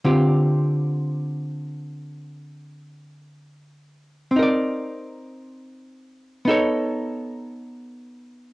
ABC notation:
X:1
M:4/4
L:1/8
Q:"Swing" 1/4=56
K:Dm
V:1 name="Hollow-body jazz guitar"
[D,CFG]8 | [C_EBd]4 [=B,^DA^c]4 |]